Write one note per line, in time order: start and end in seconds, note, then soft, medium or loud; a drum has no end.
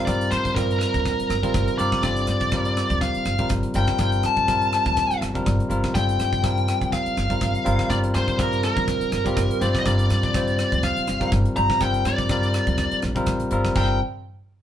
0.05 0.27 G1 medium
0.05 0.54 G3 medium
0.05 0.54 C4 medium
0.05 0.55 F4 medium
0.05 0.55 A#4 medium
0.05 0.32 D5 medium
0.05 kick medium
0.05 cross-stick medium
0.05 closed hi-hat medium
0.21 closed hi-hat soft
0.31 0.83 G2 medium
0.31 0.55 C5 medium
0.31 cross-stick medium
0.31 closed hi-hat medium
0.45 kick medium
0.45 closed hi-hat soft
0.55 1.38 G3 medium
0.55 1.39 C4 medium
0.55 1.39 F4 medium
0.55 1.39 G4 medium
0.55 0.78 A#4 medium
0.55 kick loud
0.55 cross-stick medium
0.55 closed hi-hat medium
0.71 closed hi-hat soft
0.79 1.78 A#4 medium
0.79 cross-stick medium
0.79 closed hi-hat medium
0.94 1.14 D2 medium
0.94 kick medium
0.94 closed hi-hat soft
1.05 kick medium
1.05 cross-stick medium
1.05 closed hi-hat medium
1.19 muted upright bass stroke soft
1.19 closed hi-hat soft
1.29 1.50 G1 medium
1.29 cross-stick medium
1.29 closed hi-hat medium
1.42 1.77 G3 medium
1.42 1.77 C4 medium
1.42 1.78 F4 medium
1.42 1.78 A#4 medium
1.42 kick medium
1.42 closed hi-hat soft
1.54 1.65 G1 medium
1.54 kick loud
1.54 cross-stick medium
1.54 closed hi-hat medium
1.68 closed hi-hat soft
1.78 1.90 G1 medium
1.78 2.02 G3 medium
1.78 2.03 C4 medium
1.78 2.03 F4 medium
1.78 2.03 A#4 medium
1.78 2.02 D5 medium
1.78 closed hi-hat medium
1.92 kick medium
1.92 cross-stick medium
1.92 closed hi-hat soft
2.03 2.23 G1 medium
2.03 2.50 G3 medium
2.03 2.50 C4 medium
2.03 2.51 F4 medium
2.03 2.51 A4 medium
2.03 2.98 D5 medium
2.03 kick medium
2.03 cross-stick medium
2.03 closed hi-hat medium
2.17 closed hi-hat soft
2.27 2.79 G2 medium
2.27 cross-stick medium
2.27 closed hi-hat medium
2.41 kick medium
2.41 closed hi-hat soft
2.51 3.34 G3 medium
2.51 3.35 C4 medium
2.51 3.35 F4 medium
2.51 3.35 A#4 medium
2.51 kick loud
2.51 cross-stick medium
2.51 closed hi-hat medium
2.65 closed hi-hat soft
2.77 cross-stick medium
2.77 closed hi-hat medium
2.90 3.10 D2 medium
2.90 kick medium
2.90 closed hi-hat soft
3.01 3.47 F5 medium
3.01 kick medium
3.01 cross-stick medium
3.01 closed hi-hat medium
3.14 muted upright bass stroke soft
3.14 closed hi-hat soft
3.25 3.46 G1 medium
3.25 cross-stick medium
3.25 closed hi-hat medium
3.38 3.73 G3 medium
3.38 3.73 C4 medium
3.38 3.73 F4 medium
3.38 3.74 A#4 medium
3.38 kick medium
3.38 closed hi-hat soft
3.49 3.61 G1 medium
3.49 kick loud
3.49 cross-stick medium
3.49 closed hi-hat medium
3.63 closed hi-hat soft
3.74 3.86 G1 medium
3.74 3.97 G3 medium
3.74 3.99 C4 medium
3.74 3.99 F4 medium
3.74 3.99 A#4 medium
3.74 4.00 G5 medium
3.74 closed hi-hat medium
3.87 kick medium
3.87 cross-stick medium
3.87 closed hi-hat soft
3.98 4.19 G1 medium
3.98 4.46 G3 medium
3.98 4.46 C4 medium
3.98 4.47 F4 medium
3.98 4.47 A#4 medium
3.98 4.26 G5 medium
3.98 kick medium
3.98 cross-stick medium
3.98 closed hi-hat medium
4.12 closed hi-hat soft
4.23 4.74 G2 medium
4.23 5.19 A5 medium
4.23 cross-stick medium
4.23 closed hi-hat medium
4.36 kick medium
4.36 closed hi-hat soft
4.47 5.30 G3 medium
4.47 5.30 C4 medium
4.47 5.30 F4 medium
4.47 5.31 A#4 medium
4.47 kick loud
4.47 cross-stick medium
4.47 closed hi-hat medium
4.62 closed hi-hat soft
4.73 cross-stick medium
4.73 closed hi-hat medium
4.86 5.06 D2 medium
4.86 kick medium
4.86 closed hi-hat soft
4.97 kick medium
4.97 cross-stick medium
4.97 closed hi-hat medium
5.10 muted upright bass stroke soft
5.10 closed hi-hat soft
5.21 5.41 G1 medium
5.21 5.45 A5 medium
5.21 cross-stick medium
5.21 closed hi-hat medium
5.33 5.68 G3 medium
5.33 5.69 C4 medium
5.33 5.69 F4 medium
5.33 5.69 A#4 loud
5.33 kick medium
5.33 closed hi-hat soft
5.46 5.57 G1 medium
5.46 5.92 D5 medium
5.46 kick loud
5.46 cross-stick medium
5.46 closed hi-hat medium
5.60 closed hi-hat soft
5.69 5.81 G1 medium
5.69 5.92 G3 medium
5.69 5.93 C4 medium
5.69 5.93 F4 medium
5.69 5.94 A#4 medium
5.69 closed hi-hat medium
5.84 kick medium
5.84 cross-stick medium
5.84 closed hi-hat soft
5.93 6.15 G1 medium
5.93 6.41 G3 medium
5.93 6.41 C4 medium
5.93 6.42 F4 medium
5.93 6.42 A4 medium
5.93 6.92 G5 medium
5.93 kick medium
5.93 cross-stick medium
5.93 closed hi-hat medium
6.09 closed hi-hat soft
6.19 6.70 G2 medium
6.19 cross-stick medium
6.19 closed hi-hat medium
6.33 kick medium
6.33 closed hi-hat soft
6.42 7.25 G3 medium
6.42 7.25 C4 medium
6.42 7.26 F4 medium
6.42 7.26 A#4 medium
6.42 kick loud
6.42 cross-stick medium
6.42 closed hi-hat medium
6.57 closed hi-hat soft
6.68 cross-stick medium
6.68 closed hi-hat medium
6.81 7.02 D2 medium
6.81 kick medium
6.81 closed hi-hat soft
6.92 7.94 F5 loud
6.92 kick medium
6.92 cross-stick medium
6.92 closed hi-hat medium
7.06 muted upright bass stroke soft
7.06 closed hi-hat soft
7.17 7.37 G1 medium
7.17 cross-stick medium
7.17 closed hi-hat medium
7.29 7.63 G3 medium
7.29 7.64 C4 medium
7.29 7.64 F4 medium
7.29 7.65 A#4 medium
7.29 kick medium
7.29 closed hi-hat soft
7.41 7.52 G1 medium
7.41 kick loud
7.41 cross-stick medium
7.41 closed hi-hat medium
7.55 closed hi-hat soft
7.65 7.77 G1 medium
7.65 7.87 G3 medium
7.65 7.88 C4 medium
7.65 7.88 F4 medium
7.65 7.89 A#4 loud
7.65 closed hi-hat medium
7.79 kick medium
7.79 cross-stick medium
7.79 closed hi-hat soft
7.89 8.10 G1 medium
7.89 8.36 G3 medium
7.89 8.36 C4 medium
7.89 8.37 F4 medium
7.89 8.37 A#4 medium
7.89 7.96 D5 medium
7.89 kick medium
7.89 cross-stick medium
7.89 closed hi-hat medium
8.04 closed hi-hat soft
8.14 8.66 G2 medium
8.14 8.40 C5 medium
8.14 cross-stick medium
8.14 closed hi-hat medium
8.28 kick medium
8.28 closed hi-hat soft
8.38 9.20 G3 medium
8.38 9.20 C4 medium
8.38 9.21 F4 medium
8.38 9.21 G4 medium
8.38 8.63 A#4 medium
8.38 kick loud
8.38 cross-stick medium
8.38 closed hi-hat medium
8.53 closed hi-hat soft
8.63 9.65 A#4 medium
8.63 cross-stick medium
8.63 closed hi-hat medium
8.77 8.97 D2 medium
8.77 kick medium
8.77 closed hi-hat soft
8.88 kick medium
8.88 cross-stick medium
8.88 closed hi-hat medium
9.01 muted upright bass stroke soft
9.01 closed hi-hat soft
9.12 9.32 G1 medium
9.12 cross-stick medium
9.12 closed hi-hat medium
9.24 9.59 G3 medium
9.24 9.60 C4 medium
9.24 9.60 F4 medium
9.24 9.60 G4 loud
9.24 kick medium
9.24 closed hi-hat soft
9.37 9.48 G1 medium
9.37 kick loud
9.37 cross-stick medium
9.37 closed hi-hat medium
9.51 closed hi-hat soft
9.60 9.72 G1 loud
9.60 9.83 G3 medium
9.60 9.84 C4 medium
9.60 9.85 F4 medium
9.60 9.85 C5 medium
9.60 9.79 D5 medium
9.60 closed hi-hat medium
9.75 kick medium
9.75 cross-stick medium
9.75 closed hi-hat soft
9.79 9.86 D#5 medium
9.85 10.05 G1 loud
9.85 10.32 G3 medium
9.85 10.32 C4 medium
9.85 10.33 F4 medium
9.85 10.33 A#4 medium
9.85 10.87 D5 medium
9.85 kick medium
9.85 cross-stick medium
9.85 closed hi-hat medium
9.99 closed hi-hat soft
10.10 10.61 G2 medium
10.10 cross-stick medium
10.10 closed hi-hat medium
10.23 kick medium
10.23 closed hi-hat soft
10.34 11.16 G3 medium
10.34 11.16 C4 medium
10.34 11.17 F4 medium
10.34 11.17 C5 medium
10.34 kick loud
10.34 cross-stick medium
10.34 closed hi-hat medium
10.48 closed hi-hat soft
10.59 cross-stick medium
10.59 closed hi-hat medium
10.72 10.92 D2 medium
10.72 kick medium
10.72 closed hi-hat soft
10.83 11.29 F5 medium
10.83 kick medium
10.83 cross-stick medium
10.83 closed hi-hat medium
10.97 muted upright bass stroke soft
10.97 closed hi-hat soft
11.07 11.28 G1 medium
11.07 cross-stick medium
11.07 closed hi-hat medium
11.20 11.54 G3 medium
11.20 11.54 C4 medium
11.20 11.55 F4 medium
11.20 11.55 A#4 medium
11.20 kick medium
11.20 closed hi-hat soft
11.32 11.43 G1 medium
11.32 kick loud
11.32 cross-stick medium
11.32 closed hi-hat medium
11.45 closed hi-hat soft
11.55 11.68 G1 medium
11.55 11.79 G3 medium
11.55 11.79 C4 medium
11.55 11.80 F4 medium
11.55 11.80 C5 medium
11.55 11.82 A#5 loud
11.55 closed hi-hat medium
11.70 kick medium
11.70 cross-stick medium
11.70 closed hi-hat soft
11.80 12.01 G1 medium
11.80 12.27 G3 medium
11.80 12.27 C4 medium
11.80 12.28 F4 medium
11.80 12.28 A#4 medium
11.80 12.06 G5 medium
11.80 kick medium
11.80 cross-stick medium
11.80 closed hi-hat medium
11.94 closed hi-hat soft
12.05 12.56 G2 medium
12.05 12.99 D5 medium
12.05 cross-stick medium
12.05 closed hi-hat medium
12.18 kick medium
12.18 closed hi-hat soft
12.29 13.11 G3 medium
12.29 13.11 C4 medium
12.29 13.12 F4 medium
12.29 13.12 A#4 medium
12.29 kick loud
12.29 cross-stick medium
12.29 closed hi-hat medium
12.43 closed hi-hat soft
12.54 cross-stick medium
12.54 closed hi-hat medium
12.67 12.87 D2 medium
12.67 kick medium
12.67 closed hi-hat soft
12.78 kick medium
12.78 cross-stick medium
12.78 closed hi-hat medium
12.91 muted upright bass stroke soft
12.91 closed hi-hat soft
13.02 13.25 A#1 medium
13.02 cross-stick medium
13.02 closed hi-hat medium
13.15 13.49 G3 medium
13.15 13.50 C4 medium
13.15 13.50 F4 medium
13.15 13.50 A#4 loud
13.15 kick medium
13.15 closed hi-hat soft
13.26 13.49 A1 medium
13.26 kick loud
13.26 cross-stick medium
13.26 closed hi-hat medium
13.40 closed hi-hat soft
13.51 13.74 G1 medium
13.51 13.75 G3 medium
13.51 13.75 C4 medium
13.51 13.75 F4 medium
13.51 13.75 A#4 loud
13.51 closed hi-hat medium
13.64 kick medium
13.64 cross-stick medium
13.64 closed hi-hat soft
13.75 13.99 G1 medium
13.75 13.99 G3 medium
13.75 13.99 C4 medium
13.75 13.99 F4 medium
13.75 13.99 A#4 medium
13.75 13.99 G5 medium
13.75 kick loud
13.75 crash medium